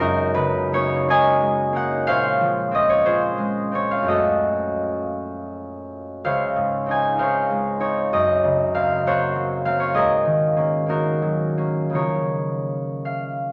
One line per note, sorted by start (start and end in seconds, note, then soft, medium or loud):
0.00 2.07 F#2 medium
0.00 1.40 G#3 medium
0.00 2.72 C#4 medium
0.00 0.73 D#4 medium
0.00 2.08 F#4 medium
0.00 2.95 G#4 medium
0.00 3.89 A#4 medium
0.00 0.72 C#5 loud
0.34 2.08 C#3 medium
0.34 0.97 B4 loud
0.73 1.08 A#3 medium
0.73 1.08 D#4 medium
0.73 1.09 C#5 loud
1.08 1.72 A#3 medium
1.08 1.74 D#4 medium
1.08 2.08 C#5 medium
1.08 2.09 D#5 medium
1.08 4.11 G#5 loud
1.41 3.37 G#3 medium
1.73 4.11 A#3 medium
1.73 2.09 D#4 medium
1.73 2.09 F#5 loud
2.07 4.11 A#2 medium
2.07 3.04 C5 medium
2.07 2.88 C#5 medium
2.07 3.90 F5 loud
2.41 4.12 F3 medium
2.71 3.04 C4 medium
2.71 3.05 C#4 medium
2.71 2.99 D#5 loud
2.90 3.16 C#5 medium
3.05 3.71 C4 soft
3.05 3.72 C#4 soft
3.05 4.12 F4 medium
3.05 4.12 G#4 medium
3.05 4.11 C5 loud
3.38 4.11 G#3 medium
3.72 4.11 C4 soft
3.72 4.04 C#4 medium
3.72 4.03 C#5 medium
3.91 4.21 F5 medium
4.03 6.22 F#2 medium
4.03 6.23 A3 soft
4.03 7.97 C#4 soft
4.08 6.25 F#4 medium
4.08 6.25 A4 medium
4.08 7.98 D#5 medium
6.24 8.15 C#2 medium
6.24 7.18 C5 medium
6.24 7.18 C#5 medium
6.24 7.17 F5 medium
6.56 8.14 G#2 soft
6.86 7.17 C4 soft
6.86 7.17 D#4 soft
6.91 8.15 G#5 medium
7.17 7.79 C4 soft
7.17 7.80 D#4 soft
7.17 9.06 C5 medium
7.17 8.73 F5 medium
7.22 7.79 C#5 medium
7.50 8.14 G#3 soft
7.80 8.74 C4 soft
7.80 8.14 D#4 soft
7.80 9.06 C#5 medium
8.13 9.96 F#2 medium
8.13 9.17 D#5 medium
8.44 9.95 C#3 medium
8.74 9.05 A#3 soft
8.74 9.05 C4 medium
8.74 9.64 F5 medium
9.06 9.64 A#3 soft
9.06 9.65 C4 medium
9.06 9.96 C5 medium
9.06 9.79 C#5 medium
9.06 11.96 F#5 medium
9.36 11.21 F#3 soft
9.65 10.55 A#3 soft
9.65 9.96 C4 medium
9.65 9.96 F5 medium
9.80 10.04 C#5 medium
9.94 11.96 G#2 medium
9.94 11.94 G#4 medium
9.94 10.87 A#4 medium
9.94 13.52 D#5 medium
10.25 11.96 D#3 soft
10.56 10.86 A#3 soft
10.56 10.87 C#4 soft
10.86 11.57 A#3 soft
10.86 11.56 C#4 soft
10.86 11.92 D#4 soft
10.86 11.96 F#4 medium
10.86 11.94 A#4 medium
11.22 11.96 F#3 soft
11.57 11.91 A#3 soft
11.57 13.52 C#4 soft
11.90 13.52 C#3 soft
11.90 13.52 F3 soft
11.90 13.52 A#3 soft
11.90 13.52 D#4 soft
11.95 13.52 G#4 soft
11.95 13.52 A#4 soft
11.95 13.52 C#5 medium
13.05 13.52 F5 medium